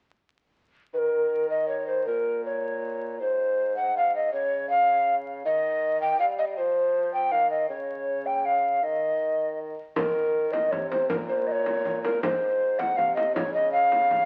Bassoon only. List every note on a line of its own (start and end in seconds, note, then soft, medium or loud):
0.94 2.09 D#3 medium
2.07 3.20 A#2 soft
3.21 4.31 G#2 medium
4.33 5.43 C#3 medium
5.45 6.21 D#3 medium
6.19 6.58 G3 medium
6.57 7.33 F3 medium
7.32 7.69 D#3 medium
7.70 8.80 C#3 medium
8.83 9.76 D#3 medium
9.97 10.74 D#3 medium
10.72 11.12 C3 medium
11.10 12.23 A#2 medium
12.23 13.00 G#2 medium
12.98 13.37 C3 medium
13.36 14.25 C#3 medium